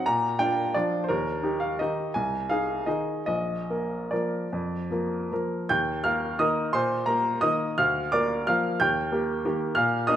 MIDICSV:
0, 0, Header, 1, 2, 480
1, 0, Start_track
1, 0, Key_signature, -3, "major"
1, 0, Tempo, 341491
1, 76, Time_signature, 3, 2, 24, 8
1, 1999, Tempo, 358423
1, 3919, Tempo, 416378
1, 5359, Tempo, 398936
1, 7279, Tempo, 344828
1, 11119, Tempo, 324149
1, 13643, End_track
2, 0, Start_track
2, 0, Title_t, "Upright piano"
2, 0, Program_c, 0, 0
2, 83, Note_on_c, 0, 82, 79
2, 99, Note_on_c, 0, 46, 54
2, 329, Control_c, 0, 64, 127
2, 546, Note_off_c, 0, 46, 0
2, 549, Note_on_c, 0, 79, 84
2, 552, Note_off_c, 0, 82, 0
2, 561, Note_on_c, 0, 62, 41
2, 576, Note_on_c, 0, 65, 43
2, 999, Note_off_c, 0, 62, 0
2, 1007, Note_off_c, 0, 65, 0
2, 1042, Note_off_c, 0, 79, 0
2, 1047, Note_on_c, 0, 74, 61
2, 1063, Control_c, 0, 64, 0
2, 1063, Note_on_c, 0, 62, 39
2, 1068, Note_on_c, 0, 53, 38
2, 1076, Note_on_c, 0, 65, 42
2, 1434, Note_off_c, 0, 74, 0
2, 1460, Note_on_c, 0, 72, 49
2, 1490, Note_off_c, 0, 62, 0
2, 1493, Note_off_c, 0, 53, 0
2, 1497, Note_off_c, 0, 65, 0
2, 1525, Note_on_c, 0, 70, 67
2, 1541, Note_off_c, 0, 72, 0
2, 1546, Note_on_c, 0, 39, 48
2, 1753, Control_c, 0, 64, 127
2, 1994, Note_off_c, 0, 39, 0
2, 2011, Note_on_c, 0, 63, 40
2, 2019, Note_on_c, 0, 67, 41
2, 2235, Note_on_c, 0, 77, 61
2, 2236, Note_off_c, 0, 70, 0
2, 2443, Note_off_c, 0, 63, 0
2, 2448, Note_off_c, 0, 67, 0
2, 2484, Note_off_c, 0, 77, 0
2, 2493, Note_on_c, 0, 75, 57
2, 2506, Control_c, 0, 64, 0
2, 2519, Note_on_c, 0, 51, 35
2, 2519, Note_on_c, 0, 63, 34
2, 2525, Note_on_c, 0, 67, 39
2, 2926, Note_off_c, 0, 51, 0
2, 2926, Note_off_c, 0, 63, 0
2, 2930, Note_off_c, 0, 67, 0
2, 2959, Note_off_c, 0, 75, 0
2, 2963, Note_on_c, 0, 80, 68
2, 2981, Note_on_c, 0, 36, 45
2, 3203, Control_c, 0, 64, 127
2, 3417, Note_off_c, 0, 36, 0
2, 3422, Note_off_c, 0, 80, 0
2, 3435, Note_on_c, 0, 77, 69
2, 3452, Note_on_c, 0, 63, 34
2, 3455, Note_on_c, 0, 68, 40
2, 3889, Note_off_c, 0, 63, 0
2, 3890, Note_off_c, 0, 68, 0
2, 3927, Note_off_c, 0, 77, 0
2, 3929, Note_on_c, 0, 75, 51
2, 3934, Note_on_c, 0, 51, 32
2, 3938, Control_c, 0, 64, 0
2, 3943, Note_on_c, 0, 63, 33
2, 3948, Note_on_c, 0, 68, 35
2, 4346, Note_off_c, 0, 51, 0
2, 4350, Note_off_c, 0, 63, 0
2, 4353, Note_off_c, 0, 68, 0
2, 4370, Note_off_c, 0, 75, 0
2, 4387, Note_on_c, 0, 75, 63
2, 4405, Note_on_c, 0, 34, 41
2, 4693, Control_c, 0, 64, 127
2, 4874, Note_off_c, 0, 34, 0
2, 4895, Note_on_c, 0, 58, 31
2, 4897, Note_on_c, 0, 70, 35
2, 5322, Note_off_c, 0, 58, 0
2, 5323, Note_off_c, 0, 70, 0
2, 5361, Note_off_c, 0, 75, 0
2, 5362, Note_on_c, 0, 74, 44
2, 5380, Control_c, 0, 64, 0
2, 5381, Note_on_c, 0, 58, 32
2, 5383, Note_on_c, 0, 53, 30
2, 5388, Note_on_c, 0, 70, 33
2, 5795, Note_off_c, 0, 58, 0
2, 5796, Note_off_c, 0, 53, 0
2, 5799, Note_off_c, 0, 70, 0
2, 5866, Note_on_c, 0, 41, 39
2, 6118, Control_c, 0, 64, 127
2, 6306, Note_off_c, 0, 41, 0
2, 6325, Note_on_c, 0, 53, 30
2, 6336, Note_on_c, 0, 70, 34
2, 6339, Note_on_c, 0, 58, 31
2, 6764, Note_off_c, 0, 53, 0
2, 6770, Note_off_c, 0, 70, 0
2, 6772, Note_off_c, 0, 58, 0
2, 6802, Note_off_c, 0, 74, 0
2, 6818, Control_c, 0, 64, 0
2, 6820, Note_on_c, 0, 58, 29
2, 6821, Note_on_c, 0, 53, 30
2, 6829, Note_on_c, 0, 70, 34
2, 7241, Note_off_c, 0, 58, 0
2, 7242, Note_off_c, 0, 53, 0
2, 7247, Note_off_c, 0, 70, 0
2, 7270, Note_on_c, 0, 91, 76
2, 7280, Note_on_c, 0, 79, 57
2, 7287, Note_on_c, 0, 39, 53
2, 7557, Control_c, 0, 64, 127
2, 7722, Note_off_c, 0, 79, 0
2, 7745, Note_off_c, 0, 39, 0
2, 7747, Note_on_c, 0, 89, 74
2, 7749, Note_off_c, 0, 91, 0
2, 7761, Note_on_c, 0, 77, 59
2, 7765, Note_on_c, 0, 58, 40
2, 7765, Note_on_c, 0, 70, 46
2, 8206, Note_off_c, 0, 58, 0
2, 8206, Note_off_c, 0, 70, 0
2, 8218, Note_off_c, 0, 77, 0
2, 8240, Note_on_c, 0, 87, 72
2, 8245, Note_off_c, 0, 89, 0
2, 8245, Note_on_c, 0, 51, 40
2, 8250, Note_on_c, 0, 75, 54
2, 8258, Note_on_c, 0, 70, 42
2, 8260, Note_on_c, 0, 58, 42
2, 8262, Control_c, 0, 64, 0
2, 8674, Note_off_c, 0, 51, 0
2, 8682, Note_off_c, 0, 58, 0
2, 8682, Note_off_c, 0, 70, 0
2, 8691, Note_off_c, 0, 75, 0
2, 8711, Note_on_c, 0, 84, 76
2, 8719, Note_off_c, 0, 87, 0
2, 8733, Note_on_c, 0, 46, 54
2, 8735, Note_on_c, 0, 72, 62
2, 8997, Control_c, 0, 64, 127
2, 9157, Note_off_c, 0, 72, 0
2, 9170, Note_on_c, 0, 82, 62
2, 9174, Note_off_c, 0, 46, 0
2, 9177, Note_off_c, 0, 84, 0
2, 9190, Note_on_c, 0, 58, 41
2, 9191, Note_on_c, 0, 70, 46
2, 9620, Note_off_c, 0, 58, 0
2, 9635, Note_off_c, 0, 70, 0
2, 9658, Note_off_c, 0, 82, 0
2, 9659, Note_on_c, 0, 87, 78
2, 9670, Note_on_c, 0, 75, 57
2, 9680, Note_on_c, 0, 58, 42
2, 9684, Note_on_c, 0, 51, 40
2, 9685, Control_c, 0, 64, 0
2, 9687, Note_on_c, 0, 70, 44
2, 10118, Note_off_c, 0, 58, 0
2, 10121, Note_off_c, 0, 51, 0
2, 10122, Note_off_c, 0, 70, 0
2, 10128, Note_off_c, 0, 75, 0
2, 10157, Note_off_c, 0, 87, 0
2, 10170, Note_on_c, 0, 89, 79
2, 10178, Note_on_c, 0, 38, 52
2, 10178, Note_on_c, 0, 77, 60
2, 10477, Control_c, 0, 64, 127
2, 10612, Note_off_c, 0, 77, 0
2, 10631, Note_off_c, 0, 38, 0
2, 10640, Note_off_c, 0, 89, 0
2, 10645, Note_on_c, 0, 86, 75
2, 10661, Note_on_c, 0, 74, 57
2, 10665, Note_on_c, 0, 58, 43
2, 10670, Note_on_c, 0, 70, 47
2, 11088, Note_off_c, 0, 58, 0
2, 11091, Note_off_c, 0, 70, 0
2, 11100, Note_off_c, 0, 74, 0
2, 11126, Note_off_c, 0, 86, 0
2, 11133, Control_c, 0, 64, 0
2, 11135, Note_on_c, 0, 89, 82
2, 11154, Note_on_c, 0, 53, 41
2, 11156, Note_on_c, 0, 77, 60
2, 11166, Note_on_c, 0, 58, 42
2, 11170, Note_on_c, 0, 70, 44
2, 11583, Note_off_c, 0, 53, 0
2, 11590, Note_off_c, 0, 58, 0
2, 11592, Note_off_c, 0, 70, 0
2, 11599, Note_off_c, 0, 77, 0
2, 11619, Note_on_c, 0, 91, 76
2, 11622, Note_off_c, 0, 89, 0
2, 11638, Note_on_c, 0, 39, 55
2, 11640, Note_on_c, 0, 79, 62
2, 11873, Control_c, 0, 64, 127
2, 12084, Note_off_c, 0, 39, 0
2, 12094, Note_on_c, 0, 58, 42
2, 12103, Note_on_c, 0, 67, 46
2, 12533, Note_off_c, 0, 58, 0
2, 12538, Note_off_c, 0, 67, 0
2, 12586, Note_on_c, 0, 51, 42
2, 12590, Control_c, 0, 64, 0
2, 12592, Note_on_c, 0, 58, 44
2, 12592, Note_on_c, 0, 67, 46
2, 12776, Note_off_c, 0, 79, 0
2, 12825, Note_off_c, 0, 91, 0
2, 13011, Note_off_c, 0, 51, 0
2, 13014, Note_off_c, 0, 58, 0
2, 13014, Note_off_c, 0, 67, 0
2, 13029, Note_on_c, 0, 89, 84
2, 13053, Note_on_c, 0, 77, 62
2, 13055, Note_on_c, 0, 46, 57
2, 13316, Control_c, 0, 64, 127
2, 13486, Note_off_c, 0, 77, 0
2, 13506, Note_off_c, 0, 46, 0
2, 13506, Note_on_c, 0, 87, 82
2, 13507, Note_off_c, 0, 89, 0
2, 13522, Note_on_c, 0, 75, 65
2, 13523, Note_on_c, 0, 58, 45
2, 13534, Note_on_c, 0, 62, 49
2, 13643, Note_off_c, 0, 58, 0
2, 13643, Note_off_c, 0, 62, 0
2, 13643, Note_off_c, 0, 75, 0
2, 13643, Note_off_c, 0, 87, 0
2, 13643, End_track
0, 0, End_of_file